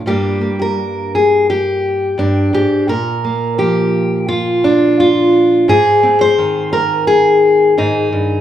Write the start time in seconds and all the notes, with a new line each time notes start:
0.06 G2 G3 A#3 D4 G4
0.41 A#3
0.62 A#4
1.15 G#4
1.50 G4
2.18 G2 D4
2.53 G#2 G4
2.88 A#2 A#4
3.24 A#3
3.58 F3 G4
4.28 F4
4.64 D4
5.00 F4
5.68 G#2 G#4
6.03 C4
6.21 C5
6.38 D#3
6.73 A#4
7.07 G#4
7.77 G#2 D#4
8.12 G2